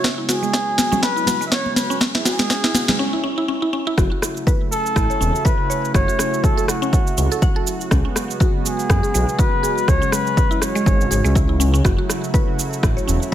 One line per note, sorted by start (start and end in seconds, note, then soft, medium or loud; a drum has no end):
0.00 2.95 C#3 medium
0.00 0.17 C#4 medium
0.00 1.97 F#4 medium
0.04 2.97 F#3 medium
0.04 2.97 G#3 medium
0.04 2.97 B3 medium
0.04 kick loud
0.04 snare medium
0.04 muted conga medium
0.04 high conga medium
0.04 shaker medium
0.18 0.24 E4 medium
0.29 0.42 F#4 medium
0.29 0.99 G#4 medium
0.29 snare medium
0.29 shaker medium
0.42 0.52 G#3 medium
0.42 muted conga soft
0.42 shaker soft
0.53 0.67 C#4 medium
0.53 kick loud
0.53 snare medium
0.53 shaker medium
0.78 snare medium
0.78 high conga medium
0.78 shaker medium
0.92 0.98 C#4 medium
0.92 muted conga medium
0.92 low conga loud
0.92 shaker soft
1.02 1.15 C#4 medium
1.02 1.43 B4 loud
1.02 kick loud
1.02 snare medium
1.02 shaker medium
1.16 1.22 E4 medium
1.16 shaker soft
1.26 1.40 F#4 medium
1.26 snare medium
1.26 muted conga soft
1.26 high conga medium
1.26 low conga medium
1.26 shaker loud
1.41 1.51 G#3 medium
1.41 shaker soft
1.46 1.53 E5 medium
1.52 1.65 C#4 medium
1.52 1.75 C#5 loud
1.52 kick loud
1.52 snare medium
1.52 shaker medium
1.66 muted conga soft
1.66 high conga medium
1.76 1.99 B4 medium
1.76 snare medium
1.76 high conga medium
1.76 shaker loud
1.90 1.96 C#4 loud
1.90 shaker soft
2.01 2.13 C#4 loud
2.01 2.98 G#4 medium
2.01 kick loud
2.01 snare medium
2.01 muted conga medium
2.01 high conga loud
2.01 shaker medium
2.15 2.21 E4 loud
2.15 snare medium
2.25 2.39 F#4 medium
2.25 2.96 G#4 loud
2.25 snare medium
2.25 shaker loud
2.39 2.49 G#3 medium
2.39 snare medium
2.39 muted conga soft
2.39 shaker soft
2.50 2.63 C#4 loud
2.50 kick loud
2.50 snare loud
2.50 shaker medium
2.64 2.70 E4 loud
2.64 snare medium
2.64 shaker soft
2.74 2.88 F#4 medium
2.74 snare medium
2.74 high conga loud
2.74 shaker medium
2.88 2.98 G#3 medium
2.88 snare medium
2.88 muted conga soft
2.88 low conga loud
2.88 shaker soft
2.99 3.12 C#4 loud
3.13 3.19 E4 loud
3.24 3.36 C#4 loud
3.38 3.44 E4 loud
3.48 3.61 C#4 loud
3.62 3.68 E4 loud
3.73 3.86 C#4 loud
3.87 3.93 E4 loud
3.97 4.09 F#1 loud
3.97 7.87 C#3 medium
3.97 13.34 F#3 medium
3.97 7.87 A3 medium
3.97 7.87 E4 medium
3.97 11.80 F#4 medium
3.97 4.05 F#4 loud
3.97 kick loud
3.97 cross-stick medium
3.97 shaker soft
4.12 4.22 F#4 medium
4.22 cross-stick medium
4.22 shaker medium
4.37 shaker soft
4.47 4.59 B4 loud
4.47 kick loud
4.47 shaker medium
4.71 5.47 A4 loud
4.71 shaker medium
4.86 shaker soft
4.96 5.07 A1 medium
4.96 5.03 E4 loud
4.96 kick loud
4.96 cross-stick loud
4.96 shaker medium
5.10 5.16 C#5 medium
5.10 shaker soft
5.21 5.32 E1 medium
5.21 5.28 C#4 medium
5.21 shaker medium
5.35 shaker soft
5.45 5.58 B4 loud
5.45 5.94 B4 loud
5.45 kick loud
5.45 shaker medium
5.70 5.82 C#5 medium
5.70 shaker medium
5.85 shaker soft
5.94 6.06 F#1 loud
5.94 6.07 F#4 medium
5.94 6.45 C#5 loud
5.94 kick loud
5.94 cross-stick medium
5.94 shaker medium
6.08 6.18 F#4 medium
6.08 shaker soft
6.19 6.26 C#4 medium
6.19 cross-stick medium
6.19 shaker loud
6.34 shaker soft
6.44 6.68 A4 loud
6.44 kick loud
6.44 shaker medium
6.57 6.67 A4 loud
6.57 shaker soft
6.68 7.63 F#4 medium
6.68 cross-stick medium
6.68 shaker medium
6.82 6.92 C#4 loud
6.82 shaker soft
6.93 7.00 C#4 medium
6.93 kick loud
6.93 shaker medium
7.07 shaker soft
7.17 7.29 C#2 medium
7.17 7.25 C#4 medium
7.17 shaker loud
7.32 7.37 A4 loud
7.32 shaker soft
7.42 7.55 F#5 loud
7.42 kick loud
7.42 shaker medium
7.56 7.66 A4 loud
7.67 shaker medium
7.81 shaker soft
7.91 8.02 C#2 loud
7.91 13.34 C#3 medium
7.91 11.81 G#3 medium
7.91 9.86 B3 medium
7.91 7.99 C#4 loud
7.91 kick loud
7.91 cross-stick medium
7.91 shaker medium
8.05 8.15 C#4 medium
8.16 cross-stick medium
8.16 shaker loud
8.31 shaker soft
8.40 8.53 F#4 loud
8.40 kick loud
8.40 shaker medium
8.66 9.40 G#4 loud
8.66 shaker loud
8.79 shaker soft
8.90 9.01 F#2 medium
8.90 8.97 B3 loud
8.90 kick loud
8.90 cross-stick loud
8.90 shaker medium
9.03 9.09 G#4 medium
9.03 shaker soft
9.14 9.25 B1 loud
9.14 9.22 G#3 medium
9.14 shaker loud
9.29 shaker soft
9.39 9.51 F#4 loud
9.39 9.90 B4 loud
9.39 kick loud
9.39 shaker medium
9.63 9.76 G#4 medium
9.63 shaker loud
9.78 shaker soft
9.88 9.99 C#2 loud
9.88 10.00 C#4 medium
9.88 11.83 C#4 medium
9.88 10.14 C#5 loud
9.88 kick loud
9.88 cross-stick medium
9.88 shaker medium
10.02 10.12 C#4 medium
10.02 shaker soft
10.12 10.20 G#3 medium
10.12 10.62 B4 loud
10.12 cross-stick medium
10.12 shaker loud
10.27 shaker soft
10.37 kick loud
10.37 shaker medium
10.51 10.61 E4 loud
10.51 shaker soft
10.62 11.56 C#5 loud
10.62 cross-stick medium
10.62 shaker medium
10.75 10.85 G#3 loud
10.75 shaker soft
10.86 11.07 G#1 loud
10.86 10.94 G#3 medium
10.86 kick loud
10.86 shaker medium
11.01 shaker soft
11.11 11.22 G#1 medium
11.11 11.18 G#4 medium
11.11 shaker loud
11.24 11.81 C#2 loud
11.24 11.35 G#3 loud
11.24 shaker soft
11.35 11.48 E4 medium
11.35 kick loud
11.35 shaker medium
11.49 11.59 E4 medium
11.60 11.67 C#4 loud
11.60 shaker loud
11.74 11.83 C#4 loud
11.74 shaker soft
11.85 11.96 F#1 loud
11.85 13.34 A3 medium
11.85 13.34 E4 medium
11.85 11.92 F#4 loud
11.85 13.34 F#4 medium
11.85 kick loud
11.85 cross-stick medium
11.85 shaker medium
11.98 12.09 F#4 medium
12.09 cross-stick medium
12.09 shaker medium
12.24 shaker soft
12.34 12.46 B4 loud
12.34 kick loud
12.34 shaker medium
12.59 shaker medium
12.73 shaker soft
12.83 12.94 A1 medium
12.83 12.90 E4 loud
12.83 kick loud
12.83 cross-stick loud
12.83 shaker medium
12.97 13.03 C#5 medium
12.97 shaker soft
13.07 13.19 E1 medium
13.07 13.15 C#4 medium
13.07 shaker medium
13.22 shaker soft